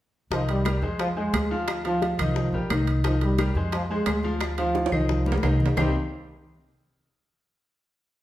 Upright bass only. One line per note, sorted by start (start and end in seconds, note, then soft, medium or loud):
0.31 0.79 C2 medium
0.82 1.30 F2 medium
1.33 2.13 D2 medium
2.18 2.50 C2 medium
2.52 2.69 A#1 medium
2.70 3.50 C2 medium
3.55 4.03 F2 medium
4.06 4.86 D2 medium
4.92 5.39 C2 medium
5.43 5.73 C2 medium
5.76 5.93 C2 medium